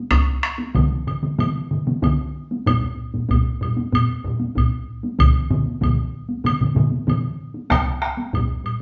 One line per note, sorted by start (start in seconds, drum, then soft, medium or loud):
0.11 taiko rim medium
0.11 taiko medium
0.11 taiko high medium
0.11 high woodblock medium
0.43 taiko rim medium
0.58 taiko high medium
0.75 taiko medium
0.75 taiko mid medium
0.75 taiko high medium
0.75 high woodblock soft
1.07 taiko mid medium
1.07 high woodblock soft
1.23 taiko mid medium
1.39 taiko mid medium
1.39 taiko high medium
1.39 high woodblock soft
1.71 taiko mid medium
1.87 taiko mid medium
1.87 taiko high medium
2.02 taiko medium
2.02 taiko mid medium
2.02 taiko high medium
2.02 high woodblock soft
2.51 taiko high medium
2.66 taiko medium
2.66 taiko low-mid medium
2.66 taiko high medium
2.66 high woodblock medium
3.14 taiko low-mid medium
3.14 taiko high medium
3.29 taiko medium
3.29 taiko low-mid medium
3.29 taiko high medium
3.29 high woodblock soft
3.61 taiko low-mid medium
3.61 high woodblock soft
3.77 taiko high medium
3.92 taiko low-mid medium
3.92 taiko high medium
3.92 high woodblock medium
4.24 taiko low-mid loud
4.40 taiko high medium
4.55 taiko medium
4.55 taiko low-mid medium
4.55 taiko high medium
4.55 high woodblock soft
5.03 taiko high soft
5.19 taiko medium
5.19 taiko low-mid medium
5.19 taiko mid medium
5.19 taiko high medium
5.19 high woodblock medium
5.50 taiko low-mid medium
5.50 taiko mid medium
5.66 taiko high soft
5.81 taiko medium
5.81 taiko low-mid medium
5.81 taiko mid medium
5.81 taiko high medium
5.81 high woodblock soft
6.29 taiko high soft
6.44 taiko low-mid medium
6.44 taiko mid medium
6.44 taiko high medium
6.44 high woodblock medium
6.60 taiko low-mid medium
6.60 taiko mid medium
6.75 taiko low-mid medium
6.75 taiko mid medium
6.75 taiko high soft
6.91 taiko high soft
7.07 taiko low-mid medium
7.07 taiko mid medium
7.07 taiko high medium
7.07 high woodblock soft
7.54 taiko high soft
7.70 taiko rim medium
7.70 taiko loud
7.70 taiko high medium
7.70 high woodblock medium
8.02 taiko rim medium
8.17 taiko high medium
8.33 taiko medium
8.33 taiko low-mid loud
8.33 taiko high medium
8.33 high woodblock soft
8.64 taiko low-mid medium
8.64 high woodblock soft